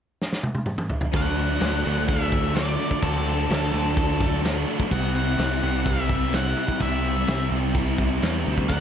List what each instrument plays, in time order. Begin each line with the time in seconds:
0.22 snare
0.33 snare
0.43 high tom
0.55 high tom
0.66 mid tom
0.78 mid tom
0.90 floor tom
1.01 floor tom
1.13 picked electric bass D2, overdriven electric guitar D3 F#3 A3 D4 F#4, lead electric guitar F#5, kick, crash
1.37 overdriven electric guitar F#3 A3 D4, crash
1.60 picked electric bass D2, overdriven electric guitar D3 F#3 A3 D4, snare, crash
1.84 picked electric bass D2, overdriven electric guitar D3 F#3 A3 D4 F#4, crash
2.08 overdriven electric guitar D3 F#3 A3, clean electric guitar E4, lead electric guitar E5, kick, crash
2.12 overdriven electric guitar D4
2.31 overdriven electric guitar F#3 A3 D4, kick, crash
2.55 overdriven electric guitar D3 F#3 A3, clean electric guitar E4, lead electric guitar D5, snare, crash
2.59 overdriven electric guitar D4
2.80 overdriven electric guitar F#3 A3 D4, crash
2.91 kick
3.00 picked electric bass D2, overdriven electric guitar D3 F#3 A3, lead electric guitar A4, kick, crash
3.05 overdriven electric guitar D3 F#3 A3 D4 F#4
3.26 overdriven electric guitar A3 D4, crash
3.30 overdriven electric guitar F#3
3.50 picked electric bass D2, overdriven electric guitar D3 F#3 A3 D4, snare, crash
3.72 picked electric bass D2, overdriven electric guitar F#3 A3 D4 F#4, crash
3.76 overdriven electric guitar D3
3.97 overdriven electric guitar D3 F#3 A3 D4, clean electric guitar E4, kick, crash
4.20 overdriven electric guitar F#3 A3 D4, kick, crash
4.44 overdriven electric guitar D3 F#3 A3 D4, clean electric guitar E4, snare, crash
4.68 overdriven electric guitar F#3 A3 D4, crash
4.80 kick
4.91 picked electric bass C2, overdriven electric guitar C3 G3 C4 E4 G4, lead electric guitar F#5, kick, crash
5.15 overdriven electric guitar G3 C4 E4, crash
5.38 picked electric bass C2, overdriven electric guitar C3 G3 C4 E4, snare, crash
5.62 picked electric bass C2, overdriven electric guitar C3 G3 C4 E4 G4, crash
5.86 overdriven electric guitar C3 G3 C4 E4, lead electric guitar E5, kick, crash
6.09 overdriven electric guitar G3 C4 E4, kick, crash
6.33 overdriven electric guitar C3 G3 C4 E4, lead electric guitar F#5, snare, crash
6.56 overdriven electric guitar G3 C4 E4, crash
6.68 kick
6.80 picked electric bass C2, overdriven electric guitar C3 G3 C4 E4 G4, lead electric guitar E5, kick, crash
7.04 overdriven electric guitar G3 C4 E4, crash
7.27 picked electric bass C2, overdriven electric guitar C3 G3 C4 E4, snare, crash
7.50 picked electric bass C2, overdriven electric guitar C3 G3 C4 E4 G4, crash
7.74 overdriven electric guitar C3 G3 C4 E4, kick, crash
7.98 overdriven electric guitar C4 E4, kick, crash
8.02 overdriven electric guitar G3
8.22 picked electric bass E2, overdriven electric guitar C3 G3 C4 E4, snare, crash
8.46 picked electric bass D2, overdriven electric guitar G3 C4 E4, crash
8.58 kick
8.68 picked electric bass D2, overdriven electric guitar D3 F#3 A3, lead electric guitar F#5, kick, crash
8.73 overdriven electric guitar D4